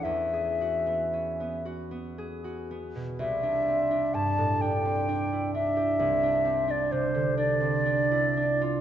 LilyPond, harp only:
\new Staff \with { instrumentName = "Harp" } { \time 6/8 \key e \major \tempo 4. = 42 <e, cis' e' gis'>16 gis'16 fis'16 b16 cis'16 b16 fis'16 b16 gis'16 fis'16 b16 b,16 | \key c \major c,16 d'16 c'16 d'16 g,16 a,16 d'16 c'16 d'16 e'16 d'16 g'16 | c,16 d'16 c'16 d'16 c16 d16 d'16 c'16 d'16 e'16 d'16 f'16 | }